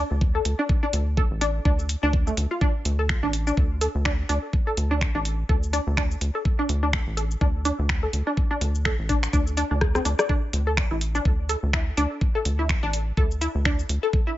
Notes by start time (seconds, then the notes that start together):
0.11 D2
0.21 kick
0.35 A4
0.45 D2, open hi-hat
0.59 D4
0.69 kick
0.83 D4
0.93 D2, open hi-hat
1.17 A4, kick
1.31 A1
1.41 D4, open hi-hat
1.65 D2 D4, kick
1.79 shaker
1.89 open hi-hat, shaker
2.03 D2 D4
2.13 kick
2.27 A3, shaker
2.37 D2, open hi-hat
2.51 F4
2.61 D4, kick
2.85 D2, open hi-hat
2.99 A4
3.09 finger snap, kick
3.23 A1 D4
3.33 open hi-hat
3.47 D4, shaker
3.57 D2, kick
3.81 A4, open hi-hat, shaker
3.95 D2
4.05 D4, finger snap, kick
4.29 D2 D4, open hi-hat
4.53 kick
4.67 A4
4.77 D2, open hi-hat
4.91 D4
5.01 finger snap, kick
5.15 A1 D4
5.25 open hi-hat
5.49 D2 A4, kick
5.63 shaker
5.73 D4, open hi-hat, shaker
5.87 D2
5.97 D4, finger snap, kick
6.11 shaker
6.21 D2, open hi-hat
6.35 A4
6.45 kick
6.59 D4
6.69 D2, open hi-hat
6.83 D4
6.93 finger snap, kick
7.07 A1
7.17 A4, open hi-hat
7.31 shaker
7.41 D2 D4, kick
7.65 D4, open hi-hat, shaker
7.79 D2
7.89 finger snap, kick
8.03 A4
8.13 D2, open hi-hat
8.27 D4
8.37 kick
8.51 D4
8.61 D2, open hi-hat
8.75 shaker
8.85 A4, finger snap, kick
8.99 A1
9.09 D4, kick, open hi-hat
9.23 finger snap, shaker
9.33 D2 D4, kick, shaker
9.47 shaker
9.57 D4, open hi-hat, shaker
9.71 D2 D4
9.81 kick, cross-stick
9.95 C4, cross-stick, shaker
10.05 D2 D4, open hi-hat, shaker
10.19 D5, cross-stick, shaker
10.29 D4, kick
10.53 D2, open hi-hat
10.67 A4
10.77 finger snap, kick
10.91 A1 E4
11.01 open hi-hat
11.15 D4, shaker
11.25 D2, kick
11.49 A4, open hi-hat, shaker
11.63 D2
11.73 E4, finger snap, kick
11.97 D2 D4, open hi-hat
12.21 kick
12.35 A4
12.45 D2, open hi-hat
12.59 E4
12.69 finger snap, kick
12.83 A1 D4
12.93 open hi-hat
13.17 D2 A4, kick
13.31 shaker
13.41 E4, open hi-hat, shaker
13.55 D2
13.65 D4, finger snap, kick
13.79 shaker
13.89 D2, open hi-hat
14.03 A4
14.13 kick
14.27 E4